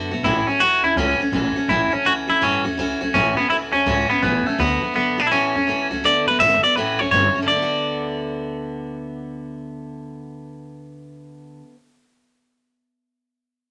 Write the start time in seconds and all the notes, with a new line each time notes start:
Already playing: D3 A3 B3 F#4
0.10 B1 A3 B3 F#4
0.23 A1 A2 E3 A3 C#4 E4 F#4
0.46 A3 C#4 F#4, muted upright bass stroke
0.59 C#2 E3 A3 C#4 F#4
0.83 E2 A3 C#4 E4 F#4
0.96 C#2 A2 E3 A3 C#4 F#4
1.19 A3 C#4 F#4, muted upright bass stroke
1.32 A1 E3 A3 C#4 F#4
1.55 A3 C#4 F#4, muted upright bass stroke
1.68 A1 A2 E3 A3 C#4 E4 F#4
1.92 A3 C#4 F#4, muted upright bass stroke
2.04 C#2 E3 A3 C#4 F#4
2.27 E2 A3 C#4 E4 F#4
2.41 G2 A2 E3 A3 C#4 F#4
2.64 E2 A3 C#4 F#4
2.77 C#2 E3 A3 C#4 F#4
3.01 C#2 A3 C#4 F#4
3.14 A1 A2 E3 A3 C#4 F#4
3.37 A3 B3 C#4 F#4, muted upright bass stroke
3.50 C#2 E3 A3 C#4 E4 F#4
3.72 E2 A3 C#4 F#4
3.86 C#2 A2 E3 A3 C#4 F#4
4.09 A3 B3 C#4 F#4, muted upright bass stroke
4.23 A1 E3 A3 B3 C#4 F#4
4.46 A3 C#4 F#4, muted upright bass stroke
4.58 D2 D3 A3 B3 F#4
4.82 A3 B3 F#4, muted upright bass stroke
4.94 F#2 D3 A3 B3 F#4
5.18 B1 A3 B3 D4 F#4
5.27 A1 E4
5.31 A2 E3 A3 C#4 F#4
5.54 E2 A3 C#4 F#4
5.67 C#2 E3 A3 C#4 F#4
5.90 C#2 A3 C#4 F#4
6.03 D2 D3 A3 B3 F#4 D5
6.26 A2 B3 F#4 B4
6.30 A3
6.39 G#1 D3 A3 B3 F#4 E5
6.62 A3 B3 F#4 D5, muted upright bass stroke
6.75 A1 A2 E3 A3 C#4 F#4 B4
6.98 C#2 C#4 F#4 C#5
7.02 A3
7.11 G1 E3 A3 C#4 C#5
7.15 F#4
7.34 A3 C#4 F#4, muted upright bass stroke
7.42 D3
7.47 D2 A3 D5
7.56 B3
7.62 F#4